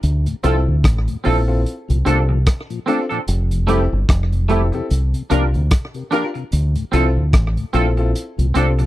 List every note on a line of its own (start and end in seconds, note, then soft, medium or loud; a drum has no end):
0.03 0.26 D2 medium
0.03 closed hi-hat medium
0.26 0.36 D2 medium
0.26 0.36 A2 medium
0.26 closed hi-hat medium
0.43 0.66 C2 medium
0.43 0.57 F3 medium
0.43 0.59 C4 loud
0.43 0.55 C4 medium
0.43 0.57 C4 medium
0.43 0.57 D4 medium
0.43 0.59 E4 medium
0.43 0.59 F4 medium
0.43 0.55 F4 medium
0.43 0.59 A4 loud
0.43 0.56 A4 medium
0.43 closed hi-hat medium
0.68 0.77 D2 medium
0.68 0.84 D2 medium
0.68 0.77 A2 medium
0.84 1.07 A1 medium
0.84 kick loud
0.84 cross-stick loud
0.84 closed hi-hat medium
1.08 1.17 D2 medium
1.08 1.17 A2 medium
1.08 closed hi-hat medium
1.24 1.64 A#1 medium
1.24 1.38 F3 medium
1.24 1.36 C4 medium
1.24 1.40 C4 medium
1.24 1.38 C4 medium
1.24 1.38 D4 medium
1.24 1.40 E4 medium
1.24 1.40 F4 medium
1.24 1.36 F4 medium
1.24 1.40 A4 loud
1.24 1.37 A4 medium
1.24 open hi-hat medium
1.48 1.59 C4 medium
1.48 1.59 E4 medium
1.48 1.59 F4 medium
1.48 1.59 A4 medium
1.48 muted clean electric guitar stroke soft
1.66 closed hi-hat medium
1.89 2.06 C2 medium
1.89 1.98 A#2 medium
1.89 1.98 F3 medium
1.89 closed hi-hat medium
2.05 2.45 C2 loud
2.05 2.19 A3 medium
2.05 2.17 C4 medium
2.05 2.21 C4 medium
2.05 2.19 C4 medium
2.05 2.21 D4 medium
2.05 2.19 D4 medium
2.05 2.17 D4 medium
2.05 2.21 F4 medium
2.05 2.21 A4 medium
2.05 2.18 A4 loud
2.05 closed hi-hat medium
2.29 2.39 A#2 medium
2.29 2.39 F3 medium
2.29 muted clean electric guitar stroke medium
2.46 kick loud
2.46 cross-stick loud
2.46 closed hi-hat loud
2.70 2.79 A#2 medium
2.70 2.80 F3 medium
2.70 closed hi-hat medium
2.86 3.00 A3 medium
2.86 2.98 C4 medium
2.86 3.03 C4 loud
2.86 3.00 C4 medium
2.86 2.98 D4 medium
2.86 3.03 D4 medium
2.86 3.00 D4 medium
2.86 3.03 F4 medium
2.86 2.99 A4 medium
2.86 3.03 A4 loud
2.86 closed hi-hat medium
3.09 3.20 A#2 medium
3.09 3.20 F3 medium
3.09 3.17 C4 medium
3.09 3.17 D4 medium
3.09 3.16 A4 medium
3.09 closed hi-hat soft
3.28 3.89 F1 loud
3.28 closed hi-hat medium
3.51 3.60 F2 medium
3.51 3.60 C3 medium
3.51 closed hi-hat medium
3.67 3.81 G3 medium
3.67 3.79 A3 loud
3.67 3.81 A3 medium
3.67 3.83 C4 loud
3.67 3.83 E4 medium
3.67 3.79 E4 medium
3.67 3.82 E4 medium
3.67 3.83 G4 loud
3.67 3.80 G4 loud
3.67 3.84 A4 loud
3.67 closed hi-hat medium
3.92 4.08 G1 loud
4.09 4.70 F1 loud
4.09 kick loud
4.09 cross-stick loud
4.09 closed hi-hat loud
4.33 4.42 F2 medium
4.33 4.42 C3 medium
4.33 closed hi-hat medium
4.49 4.62 G3 medium
4.49 4.60 A3 loud
4.49 4.62 A3 medium
4.49 4.65 C4 medium
4.49 4.61 E4 medium
4.49 4.65 E4 medium
4.49 4.62 E4 medium
4.49 4.65 G4 medium
4.49 4.61 G4 loud
4.49 4.65 A4 medium
4.49 closed hi-hat medium
4.72 4.82 F2 medium
4.72 4.82 C3 medium
4.72 4.84 C4 medium
4.72 4.85 E4 medium
4.72 4.85 G4 medium
4.72 4.85 A4 medium
4.72 muted clean electric guitar stroke soft
4.72 closed hi-hat soft
4.90 5.13 C2 loud
4.90 closed hi-hat medium
5.14 5.23 C3 medium
5.14 closed hi-hat medium
5.30 5.53 C2 medium
5.30 5.43 F3 medium
5.30 5.43 A#3 medium
5.30 5.41 D4 loud
5.30 5.46 D4 medium
5.30 5.43 D4 medium
5.30 5.42 F4 medium
5.30 5.46 F4 medium
5.30 5.46 G4 medium
5.30 5.46 A#4 medium
5.30 5.42 A#4 loud
5.30 closed hi-hat medium
5.54 5.71 D2 medium
5.54 5.63 C3 medium
5.54 closed hi-hat soft
5.71 kick loud
5.71 cross-stick loud
5.71 closed hi-hat loud
5.94 6.04 C3 medium
5.94 6.02 G4 soft
5.94 6.02 A#4 soft
5.94 closed hi-hat medium
6.11 6.24 F3 medium
6.11 6.24 A#3 medium
6.11 6.22 D4 medium
6.11 6.27 D4 loud
6.11 6.25 D4 medium
6.11 6.23 F4 medium
6.11 6.27 F4 medium
6.11 6.27 G4 medium
6.11 6.23 A#4 medium
6.11 6.27 A#4 loud
6.11 closed hi-hat medium
6.34 6.44 C3 medium
6.34 muted clean electric guitar stroke soft
6.34 closed hi-hat soft
6.52 6.75 D2 loud
6.52 closed hi-hat loud
6.75 6.85 D2 medium
6.75 6.85 A2 medium
6.75 closed hi-hat medium
6.92 7.15 C2 loud
6.92 7.05 F3 medium
6.92 7.03 C4 medium
6.92 7.08 C4 loud
6.92 7.06 C4 medium
6.92 7.06 D4 medium
6.92 7.08 E4 medium
6.92 7.04 F4 loud
6.92 7.08 F4 medium
6.92 7.08 A4 loud
6.92 7.04 A4 loud
6.92 closed hi-hat medium
7.17 7.33 D2 medium
7.17 7.26 D2 medium
7.17 7.26 A2 medium
7.33 7.56 A1 loud
7.33 kick loud
7.33 cross-stick loud
7.33 closed hi-hat loud
7.57 7.66 D2 medium
7.57 7.66 A2 medium
7.57 closed hi-hat medium
7.73 8.12 A#1 medium
7.73 7.86 F3 medium
7.73 7.85 C4 loud
7.73 7.89 C4 medium
7.73 7.87 C4 medium
7.73 7.87 D4 medium
7.73 7.89 E4 medium
7.73 7.89 F4 medium
7.73 7.85 F4 medium
7.73 7.89 A4 loud
7.73 7.85 A4 loud
7.73 closed hi-hat medium
7.97 8.09 C4 medium
7.97 8.09 E4 medium
7.97 8.09 F4 medium
7.97 8.09 A4 medium
7.97 muted clean electric guitar stroke medium
7.97 closed hi-hat soft
8.15 closed hi-hat medium
8.38 8.54 C2 medium
8.38 8.47 A#2 medium
8.38 8.47 F3 medium
8.38 closed hi-hat medium
8.54 8.86 C2 loud
8.54 8.68 A3 medium
8.54 8.66 C4 medium
8.54 8.68 C4 medium
8.54 8.71 C4 medium
8.54 8.66 D4 medium
8.54 8.68 D4 medium
8.54 8.70 D4 medium
8.54 8.71 F4 medium
8.54 8.71 A4 medium
8.54 8.67 A4 medium
8.54 closed hi-hat medium
8.79 8.86 A#2 medium
8.79 8.86 F3 medium
8.79 muted clean electric guitar stroke medium
8.79 closed hi-hat soft